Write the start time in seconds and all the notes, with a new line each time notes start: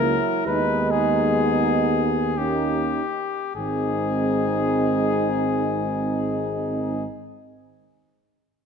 Already playing: C#2 A#3 E4 A#4
0.06 F#3
0.47 D#2 G#3 B3 D#4 B4
0.91 G#4
2.37 A#3 C#4 D#4 G4
3.56 G#1 G#3 C4 D#4 G#4